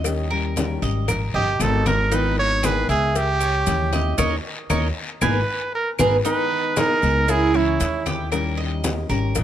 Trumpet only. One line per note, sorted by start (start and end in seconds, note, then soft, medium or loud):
1.35 1.63 G4 loud
1.62 1.87 A4 medium
1.87 2.15 A#4 medium
2.14 2.38 B4 medium
2.39 2.67 C#5 loud
2.65 2.89 B4 loud
2.90 3.18 G#4 loud
3.17 4.19 G4 loud
5.23 5.71 B4 medium
5.75 5.90 A#4 medium
6.26 6.79 B4 loud
6.78 7.32 A#4 loud
7.30 7.57 G#4 loud
7.56 8.07 E4 medium